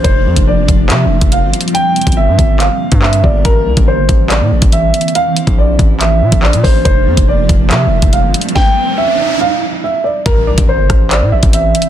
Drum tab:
HH |x-----------------x-----------------x-----------x-----------------x-----x-----------x---x---x---|x-----------x--x--x--x--------------x-----------x-----------------x-----------x-----------------|x-----------------x-----------------x-----------x-----------------x-----x-----------x---x---x---|x-----------x-----x-----------------x-----------x-----------------x-----------x-----o-----------|
CP |------------------------------------------------x-----------------------------------------------|------------------------------------------------x-----------------------x-----------------------|------------------------------------------------x-----------------------------------------------|------------------------------------------------x-----------------------x-----------------------|
SD |------------------------------------------------------------------------------------------------|------------------------------------------------------------------------------------------------|------------------------------------------------------------------------------------------------|------------------------------------------------------------------------------------------------|
BD |o-----------------o-----------------o-----------------------------o-----------------------------|------------------o-----------------o-----------------------------o-----------------o-----------|o-----------------o-----------------o-----------------------------o-----------------------------|------------------o-----------------o-----------------------------o-----------------o-----------|

HH |x-----------------x-----------------x-----------x-----------------x-----x-----------x---x---x---|------------------------------------------------------------------------------------------------|x-----------------x-----------------x-----------x-----------------x-----x-----------x---x-------|
CP |------------------------------------------------x-----------------------------------------------|------------------------------------------------------------------------------------------------|------------------------------------------------x-----------------------------------------------|
SD |------------------------------------------------------------------------------------------------|o-----------------------------------------------------------------------------------------------|------------------------------------r-----------------------------------------------------------|
BD |o-----------------o-----------------o-----------------------------o-----------------------------|o-----------------------------------------------------------------------------------------------|o-----------------o-----------------o-----------------------------o-----------------------------|